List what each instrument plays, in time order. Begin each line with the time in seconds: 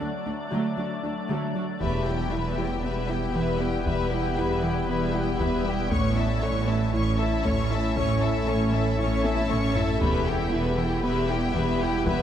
Already playing: synth drone F#3 A3 D4 D5
0.00 cello section D2, synth pluck A3, viola section D4 F#4
0.26 cello section D2, viola section A3 D4, synth pluck D4
0.52 cello section D2, synth pluck D3, viola section F#3 A3
0.78 cello section D2, synth pluck F#3, viola section D4 F#4
1.03 cello section D2, viola section A3 D4, synth pluck D4
1.29 cello section D2, synth pluck D3, viola section F#3 A3
1.55 cello section D2, synth pluck F#3, viola section D4 F#4
1.80 double bass section E1, sub bass E1, cello section E2, synth pluck E3, synth drone G3 B3 E4 B4, french horn section G3 B3, viola section G4, violin section B4 E5, taiko
2.07 viola section E4, violin section G4 G5
2.32 double bass section E1, cello section E2, synth pluck E4, viola section G4, violin section B4 E5
2.58 synth pluck E3, viola section E4, violin section G4 G5
2.83 double bass section E1, cello section E2, synth pluck B3, viola section G4, violin section B4 E5
3.09 synth pluck E4, viola section E4, violin section G4 G5
3.35 double bass section E1, cello section E2, synth pluck E3, viola section G4, violin section B4 E5
3.60 synth pluck B3, viola section E4, violin section G4 G5
3.86 double bass section E1, cello section E2, synth pluck E3, viola section G4, violin section B4 E5, taiko
4.11 viola section E4, violin section G4 G5
4.38 double bass section E1, cello section E2, synth pluck E4, viola section G4, violin section B4 E5
4.63 synth pluck E3, viola section E4, violin section G4 G5
4.89 double bass section E1, cello section E2, synth pluck B3, viola section G4, violin section B4 E5
5.14 synth pluck E4, viola section E4, violin section G4 G5
5.39 double bass section E1, cello section E2, synth pluck E3, viola section G4, violin section B4 E5, taiko
5.65 synth pluck B3, viola section E4, violin section G4 G5
5.91 double bass section A1, sub bass A1, cello section A2, synth pluck A3, french horn section A3 C#4, synth drone A3 C#4 E4 A4, viola section C#4, violin section C#5 C#6, taiko
6.16 viola section E4, violin section E5 A5
6.43 double bass section A1, cello section A2, viola section C#4, synth pluck A4, violin section C#5 C#6
6.68 synth pluck A3, viola section E4, violin section E5 A5
6.94 double bass section A1, cello section A2, viola section C#4, synth pluck E4, violin section C#5 C#6
7.19 viola section E4, synth pluck A4, violin section E5 A5
7.45 double bass section A1, cello section A2, synth pluck A3, viola section C#4, violin section C#5 C#6, taiko
7.71 synth pluck E4, viola section E4, violin section E5 A5
7.96 double bass section A1, cello section A2, synth pluck A3, viola section C#4, violin section C#5 C#6, taiko
8.22 viola section E4, violin section E5 A5
8.48 double bass section A1, cello section A2, viola section C#4, synth pluck A4, violin section C#5 C#6
8.73 synth pluck A3, viola section E4, violin section E5 A5
8.99 double bass section A1, cello section A2, viola section C#4, synth pluck E4, violin section C#5 C#6
9.24 viola section E4, synth pluck A4, violin section E5 A5, taiko high
9.50 double bass section A1, cello section A2, synth pluck A3, viola section C#4, violin section C#5 C#6, taiko low-mid
9.76 synth pluck E4, viola section E4, violin section E5 A5, taiko low
10.01 double bass section E1, sub bass E1, cello section E2, synth pluck E3, synth drone G3 B3 E4 B4, french horn section G3 B3, viola section G4, violin section B4 E5, taiko
10.27 viola section E4, violin section G4 G5
10.53 double bass section E1, cello section E2, synth pluck E4, viola section G4, violin section B4 E5
10.78 synth pluck E3, viola section E4, violin section G4 G5
11.03 double bass section E1, cello section E2, synth pluck B3, viola section G4, violin section B4 E5
11.29 synth pluck E4, viola section E4, violin section G4 G5
11.55 double bass section E1, cello section E2, synth pluck E3, viola section G4, violin section B4 E5, taiko
11.80 synth pluck B3, viola section E4, violin section G4 G5
12.06 double bass section E1, cello section E2, synth pluck E3, viola section G4, violin section B4 E5, taiko